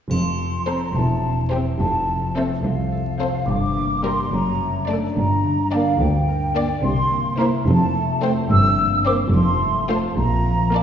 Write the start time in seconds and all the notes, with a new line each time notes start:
0.11 F1 F2 C6, triangle
0.39 C4
0.67 C4 A4 C5 A#5
0.95 E1 E2 A5
1.23 C4
1.51 C4 G4 C5 G5
1.79 F1 F2 A5
2.08 C3
2.36 A3 C4 A4 C5 E5
2.64 C2 C5 F5
2.92 A4
3.20 C4 A4 C5
3.48 G1 G2 D6
3.76 A#3
4.04 G3 G4 A#4 C6
4.32 F#1 F#2 A#5
4.61 A3
4.88 A3 D4 D5 A5
5.16 G1 G2 A#5
5.44 D3
5.72 A#3 D4 D5 F5
6.00 D2 D5 G5
6.28 A#4
6.55 A#3 D4 D5
6.83 C2 C3 C6
7.11 A#3
7.38 A#3 E4 C5 A#5
7.67 F1 F2 A5
7.95 A3
8.22 A3 C4 C5 G5
8.50 G1 G2 E6
8.78 A#3
9.05 A#3 C4 C5 D6
9.33 F1 F2 C6
9.61 A3
9.89 A3 F4 C5 A5
10.17 A#1 A#2 A#5
10.45 F3
10.73 A#3 F4 D5 A5